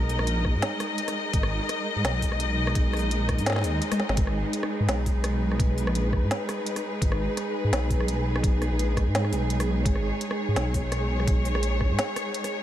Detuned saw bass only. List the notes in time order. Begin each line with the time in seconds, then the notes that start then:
Already playing: B1
0.19 A#1
0.55 G#2
1.34 G#1
1.96 G#2
2.04 B1
3.03 A#1
3.38 G#2
3.64 D#2
4.09 G#1
4.17 G#1
4.80 G#2
4.88 B1
5.87 A#1
6.22 G#2
7.02 G#1
7.64 G#2
7.72 B1
8.71 A#1
9.07 G#2
9.32 B1
9.67 B1
9.85 G#1
10.48 G#2
10.56 B1
11.55 A#1
11.90 G#2